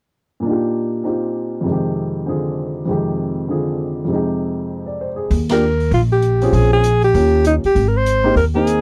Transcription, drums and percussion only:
5.31 open hi-hat soft
5.49 snare medium
5.49 ride medium
5.80 open hi-hat soft
5.92 open hi-hat soft
6.22 closed hi-hat soft
6.41 open hi-hat soft
6.53 open hi-hat soft
6.84 closed hi-hat medium
7.02 open hi-hat soft
7.15 open hi-hat soft
7.45 closed hi-hat medium
7.64 open hi-hat soft
7.76 open hi-hat soft
8.06 closed hi-hat soft
8.37 open hi-hat soft
8.67 closed hi-hat soft

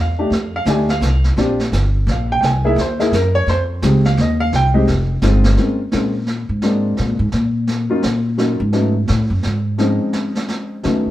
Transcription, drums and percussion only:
0.32 brush sweep soft
0.32 snare soft
0.66 snare medium
0.66 hi-hat pedal medium
0.89 snare soft
1.02 snare medium
1.02 hi-hat pedal medium
1.24 snare soft
1.37 brush sweep soft
1.37 snare soft
1.60 snare soft
1.73 snare medium
1.73 hi-hat pedal medium
2.08 snare soft
2.43 brush sweep soft
2.43 snare soft
2.78 snare medium
3.00 snare soft
3.13 snare medium
3.13 hi-hat pedal medium
3.48 brush sweep soft
3.48 snare soft
3.82 snare medium
3.82 hi-hat pedal medium
4.05 snare soft
4.18 snare soft
4.52 brush sweep medium
4.52 snare medium
4.87 snare soft
5.22 snare medium
5.22 hi-hat pedal medium
5.44 snare medium
5.57 brush sweep soft
5.57 snare soft
5.92 snare medium
6.27 snare soft
6.62 brush sweep medium
6.62 snare soft
6.97 snare soft
7.32 snare medium
7.67 brush sweep soft
7.67 snare soft
8.03 snare medium
8.38 snare soft
8.73 brush sweep soft
8.73 snare soft
9.08 snare medium
9.43 snare soft
9.78 brush sweep soft
9.78 snare soft
10.13 snare medium
10.35 snare soft
10.48 snare soft
10.83 brush sweep medium
10.83 snare soft

